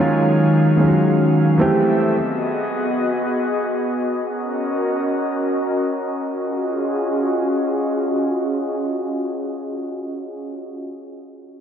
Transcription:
0.00 0.76 D#3 medium
0.00 1.55 D#3 medium
0.00 0.77 F#3 medium
0.00 1.55 F#3 medium
0.00 0.78 G#3 medium
0.00 0.79 C#4 medium
0.00 1.55 C#4 medium
0.00 0.80 F4 medium
0.00 1.55 G#4 medium
0.00 1.55 F5 medium
0.77 1.58 D#3 medium
0.77 1.59 F#3 soft
0.77 1.59 G#3 medium
0.77 1.60 C#4 medium
0.77 0.87 F4 soft
0.88 1.63 F#4 medium
1.58 2.12 E3 medium
1.58 2.12 G3 medium
1.58 2.13 A3 medium
1.58 2.12 C4 medium
1.58 2.13 C4 medium
1.58 2.12 G4 medium
1.58 2.14 G4 medium
1.58 2.12 A4 medium
1.58 2.12 E5 medium
2.13 4.25 B3 medium
2.13 4.25 F#4 medium
2.13 4.25 G#4 medium
2.13 4.25 D#5 medium
4.27 6.39 C#4 medium
4.27 6.39 F#4 medium
4.27 6.39 A#4 medium
4.27 6.39 D#5 medium
6.41 10.68 C#4 medium
6.41 10.68 F4 medium
6.41 10.68 F#4 medium
6.41 10.68 G#4 medium
6.41 10.68 D#5 medium

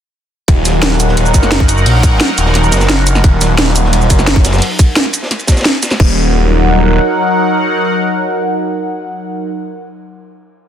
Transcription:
0.48 1.33 D#1 loud
0.48 4.58 F#3 medium
0.48 4.58 D#4 medium
0.48 4.58 A#4 medium
0.48 4.58 F#5 medium
0.48 kick loud
0.48 closed hi-hat medium
0.48 ride medium
0.65 snare soft
0.65 closed hi-hat loud
0.65 ride medium
0.65 shaker medium
0.83 snare loud
0.83 closed hi-hat medium
0.83 ride medium
0.91 snare medium
1.00 closed hi-hat medium
1.00 ride medium
1.00 shaker medium
1.08 snare soft
1.17 closed hi-hat medium
1.17 ride medium
1.26 shaker soft
1.34 1.85 F#1 loud
1.34 kick medium
1.34 closed hi-hat medium
1.34 ride medium
1.34 shaker medium
1.43 snare soft
1.43 shaker soft
1.51 snare loud
1.51 closed hi-hat medium
1.51 ride medium
1.60 kick loud
1.68 closed hi-hat loud
1.68 ride medium
1.68 shaker medium
1.78 shaker soft
1.86 2.19 A#1 loud
1.86 closed hi-hat medium
1.86 open hi-hat medium
2.03 kick loud
2.03 closed hi-hat loud
2.03 ride medium
2.03 shaker medium
2.21 snare loud
2.21 closed hi-hat medium
2.21 ride medium
2.28 snare soft
2.38 2.71 D#1 medium
2.38 closed hi-hat loud
2.38 ride medium
2.38 shaker medium
2.45 snare medium
2.54 snare soft
2.54 closed hi-hat medium
2.54 ride medium
2.64 ride soft
2.64 shaker soft
2.71 3.23 F#1 loud
2.71 snare medium
2.71 closed hi-hat medium
2.71 ride medium
2.71 shaker medium
2.76 snare medium
2.76 ride medium
2.80 snare medium
2.80 ride medium
2.80 shaker soft
2.90 snare loud
2.90 closed hi-hat medium
2.90 ride medium
3.07 closed hi-hat loud
3.07 ride medium
3.07 shaker medium
3.15 snare soft
3.15 snare medium
3.15 shaker soft
3.24 4.09 D#1 loud
3.24 kick loud
3.24 closed hi-hat medium
3.24 ride medium
3.41 snare soft
3.41 closed hi-hat medium
3.41 ride medium
3.41 shaker medium
3.58 snare loud
3.58 closed hi-hat medium
3.58 ride medium
3.68 snare medium
3.75 closed hi-hat medium
3.75 ride medium
3.75 shaker medium
3.84 snare soft
3.93 closed hi-hat medium
3.93 ride medium
4.02 shaker soft
4.10 4.61 F#1 loud
4.10 kick medium
4.10 closed hi-hat medium
4.10 ride medium
4.10 shaker medium
4.19 snare soft
4.19 shaker soft
4.27 snare loud
4.27 closed hi-hat medium
4.27 ride medium
4.36 kick loud
4.45 snare loud
4.45 closed hi-hat loud
4.45 ride medium
4.45 shaker medium
4.53 snare medium
4.53 ride medium
4.53 shaker soft
4.58 snare medium
4.58 closed hi-hat medium
4.58 open hi-hat medium
4.58 ride medium
4.79 kick loud
4.79 closed hi-hat medium
4.79 ride medium
4.79 shaker medium
4.96 snare loud
4.96 closed hi-hat medium
4.96 ride medium
5.05 snare soft
5.13 closed hi-hat medium
5.13 ride medium
5.13 shaker medium
5.22 snare medium
5.31 snare soft
5.31 closed hi-hat medium
5.31 ride medium
5.39 ride soft
5.39 shaker soft
5.47 kick medium
5.47 snare medium
5.47 closed hi-hat medium
5.47 ride medium
5.47 shaker medium
5.52 snare medium
5.52 ride medium
5.57 snare medium
5.57 ride medium
5.57 shaker soft
5.61 snare medium
5.61 ride medium
5.65 snare loud
5.65 closed hi-hat medium
5.65 ride medium
5.82 snare loud
5.82 closed hi-hat medium
5.82 ride medium
5.82 shaker medium
5.90 snare loud
5.90 snare medium
5.90 ride medium
5.90 shaker soft
6.00 6.99 D#1 loud
6.00 9.52 F#3 medium
6.00 9.52 D#4 medium
6.00 9.52 A#4 medium
6.00 9.52 F#5 medium
6.00 kick loud
6.00 crash medium

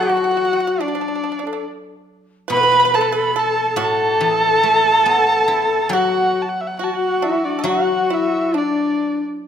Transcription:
0.00 2.51 F#3 medium
0.00 0.83 F#4 medium
0.00 0.84 F#4 medium
0.00 0.08 F#4 medium
0.00 0.83 F#5 loud
0.09 0.15 F#4 medium
0.17 0.23 F#4 soft
0.24 0.30 F#4 soft
0.31 0.36 F#4 soft
0.37 0.44 F#4 medium
0.45 0.52 F#4 soft
0.53 0.59 F#4 medium
0.60 0.66 F#4 medium
0.67 0.75 F#4 medium
0.81 0.87 D4 medium
0.81 1.66 D4 medium
0.81 1.45 D4 medium
0.81 1.66 D5 medium
0.88 0.94 D4 soft
0.95 1.00 D4 soft
1.01 1.07 D4 soft
1.08 1.14 D4 soft
1.15 1.22 D4 soft
1.24 1.31 D4 soft
1.32 1.38 D4 soft
1.39 1.46 D4 soft
1.45 1.51 D4 soft
1.45 1.65 A4 medium
1.53 1.60 D4 soft
2.48 3.78 B2 medium
2.48 2.55 B4 medium
2.48 2.62 B4 medium
2.48 2.96 B5 loud
2.52 2.96 B4 loud
2.57 2.67 A4 medium
2.57 2.62 B4 medium
2.63 2.71 B4 medium
2.63 2.90 B4 loud
2.72 2.78 B4 medium
2.80 2.84 B4 medium
2.85 2.93 B4 medium
2.90 2.98 B4 medium
2.94 3.35 A4 medium
2.94 3.38 A4 medium
2.94 3.00 B4 medium
2.94 3.16 A5 loud
3.01 3.09 B4 medium
3.12 3.33 B4 medium
3.17 3.40 B5 loud
3.36 3.75 A4 medium
3.36 3.76 A4 medium
3.36 3.77 A4 medium
3.36 3.80 A5 loud
3.76 6.35 A2 medium
3.76 4.10 F#4 loud
3.76 5.95 A4 loud
3.82 5.95 A4 medium
3.82 5.96 A5 loud
4.10 4.27 G4 loud
4.21 5.93 E3 medium
4.27 4.43 G#4 loud
4.43 5.88 A4 loud
4.63 6.36 A3 medium
5.06 6.79 B3 medium
5.48 7.22 E4 medium
5.89 7.62 F#3 medium
5.89 6.40 F#4 medium
5.93 6.44 F#4 medium
5.93 6.44 F#5 loud
6.42 6.50 A5 medium
6.49 6.62 F#5 medium
6.61 6.69 E5 medium
6.67 6.78 F#5 medium
6.79 7.20 F#4 medium
6.79 7.63 F#4 medium
6.79 6.93 F#4 medium
6.79 6.86 F#5 medium
6.84 6.95 A5 medium
6.94 7.27 F#4 medium
6.94 7.25 F#5 loud
7.22 7.57 E4 medium
7.22 7.47 E4 medium
7.22 7.46 E5 medium
7.44 7.68 D4 medium
7.44 7.69 D5 medium
7.59 7.64 A4 medium
7.64 9.48 F#3 medium
7.64 8.07 F#4 medium
7.64 8.57 F#4 medium
7.64 8.13 F#4 medium
7.64 8.15 F#5 medium
8.10 8.52 E4 medium
8.10 8.57 E4 medium
8.10 8.59 E5 loud
8.54 9.18 D4 medium
8.54 9.22 D4 medium
8.54 9.23 D5 medium

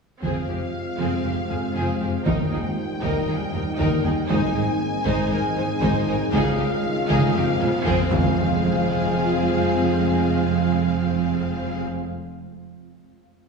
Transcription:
0.22 0.31 F1 soft
0.22 0.31 F2 soft
0.22 2.22 C3 soft
0.22 0.38 F3 medium
0.22 2.22 G#3 medium
0.22 2.22 G#3 soft
0.22 0.47 C4 soft
0.22 2.22 C4 medium
0.22 2.23 C4 soft
0.22 2.22 F4 medium
0.22 2.23 F4 soft
0.22 0.47 G#4 soft
0.22 2.23 C5 medium
0.22 2.23 F5 soft
0.22 taiko soft
0.48 0.57 F1 soft
0.48 0.56 F2 soft
0.48 0.56 C4 soft
0.48 0.64 C4 soft
0.48 0.57 G4 soft
0.98 1.07 F1 medium
0.98 1.07 F2 medium
0.98 1.14 F3 medium
0.98 1.23 C4 soft
0.98 1.23 G#4 soft
1.24 1.33 F1 soft
1.24 1.33 F2 soft
1.24 1.40 G#3 medium
1.24 1.32 C4 soft
1.24 1.33 G4 soft
1.50 1.58 F1 soft
1.50 1.58 F2 soft
1.50 1.58 C4 soft
1.50 1.66 F4 soft
1.50 1.58 G#4 soft
1.74 1.84 F1 medium
1.74 1.83 F2 soft
1.74 1.91 F3 medium
1.74 1.99 C4 soft
1.74 1.99 G#4 medium
2.00 2.09 F1 soft
2.00 2.08 F2 soft
2.00 2.08 C4 soft
2.00 2.16 C4 medium
2.00 2.09 G4 soft
2.25 2.34 D#2 medium
2.25 2.35 D#2 medium
2.25 2.42 D#3 medium
2.25 6.29 D#3 soft
2.25 4.29 G3 medium
2.25 4.26 G3 soft
2.25 4.29 A#3 medium
2.25 4.26 A#3 soft
2.25 6.33 D#4 medium
2.25 2.50 D#4 medium
2.25 6.29 D#4 soft
2.25 2.50 A#4 medium
2.25 7.34 D#5 medium
2.25 4.30 G5 soft
2.25 taiko medium
2.51 2.59 D#2 soft
2.51 2.60 D#2 soft
2.51 2.67 A#3 medium
2.51 2.59 D#4 soft
2.51 2.60 G#4 soft
3.02 3.10 D#2 medium
3.02 3.11 D#2 medium
3.02 3.18 D#3 medium
3.02 3.26 D#4 medium
3.02 3.27 A#4 medium
3.02 taiko medium
3.27 3.36 D#2 soft
3.27 3.43 G3 medium
3.27 3.35 D#4 soft
3.27 3.37 G#4 soft
3.53 3.62 D#2 soft
3.53 3.61 D#4 soft
3.53 3.69 D#4 medium
3.53 3.62 A#4 soft
3.78 3.87 D#2 medium
3.78 3.94 D#3 medium
3.78 4.02 D#4 medium
3.78 4.03 A#4 medium
3.78 taiko medium
4.04 4.12 D#2 soft
4.04 4.20 A#3 medium
4.04 4.12 D#4 medium
4.04 4.12 G#4 medium
4.29 4.38 G#1 medium
4.29 4.38 G#2 medium
4.29 7.93 G#3 medium
4.29 8.10 G#3 medium
4.29 4.45 G#3 medium
4.29 6.33 C4 medium
4.29 6.29 C4 medium
4.29 4.53 D#4 medium
4.29 4.54 C5 medium
4.29 6.29 G#5 medium
4.29 taiko medium
4.29 riser medium
4.55 4.63 G#1 medium
4.55 4.63 G#2 medium
4.55 4.70 D#4 medium
4.55 4.63 D#4 soft
4.55 4.63 A#4 soft
5.05 5.13 G#1 medium
5.05 5.14 G#2 medium
5.05 5.21 G#3 medium
5.05 5.30 D#4 medium
5.05 5.30 C5 medium
5.05 taiko medium
5.31 5.39 G#1 medium
5.31 5.40 G#2 medium
5.31 5.47 C4 medium
5.31 5.39 D#4 medium
5.31 5.39 A#4 medium
5.56 5.64 G#1 medium
5.56 5.65 G#2 medium
5.56 5.65 D#4 medium
5.56 5.72 G#4 medium
5.56 5.65 C5 medium
5.81 5.89 G#1 medium
5.81 5.90 G#2 medium
5.81 5.97 G#3 medium
5.81 6.06 D#4 medium
5.81 6.06 C5 medium
5.81 taiko medium
6.07 6.15 G#1 medium
6.07 6.16 G#2 medium
6.07 6.23 D#4 medium
6.07 6.16 D#4 medium
6.07 6.16 A#4 medium
6.32 6.40 C#2 medium
6.32 6.41 C#2 medium
6.32 6.48 C#3 medium
6.32 7.33 D#3 medium
6.32 7.33 C#4 medium
6.32 6.57 D#4 medium
6.32 7.94 F4 medium
6.32 8.10 F4 medium
6.32 6.57 G#4 medium
6.32 8.08 F5 medium
6.32 taiko medium
6.58 6.66 C#2 medium
6.58 6.74 G#3 medium
6.58 6.66 D#4 medium
6.58 6.67 G4 medium
7.09 7.17 C#2 medium
7.09 7.24 C#3 medium
7.09 7.33 D#4 medium
7.09 7.33 G#4 medium
7.09 taiko medium
7.34 7.42 F1 medium
7.34 7.42 F2 medium
7.34 7.93 F3 medium
7.34 7.50 G#3 medium
7.34 7.94 C4 medium
7.34 7.43 C4 medium
7.34 7.42 G4 medium
7.59 7.67 F1 medium
7.59 7.68 F2 medium
7.59 7.68 C4 medium
7.59 7.75 F4 medium
7.59 7.67 G#4 medium
7.59 taiko mid soft
7.85 7.93 F1 medium
7.85 7.93 F2 medium
7.85 8.01 F3 medium
7.85 8.09 C4 medium
7.85 8.09 G#4 medium
7.85 taiko medium
8.10 11.82 F1 medium
8.10 11.83 F2 medium
8.10 11.82 F3 medium
8.10 11.82 G#3 medium
8.10 11.83 G#3 medium
8.10 11.83 C4 medium
8.10 11.83 F4 medium
8.10 11.82 G#4 medium
8.10 11.83 F5 medium
8.10 11.84 F5 medium
8.10 taiko loud
8.10 impact medium

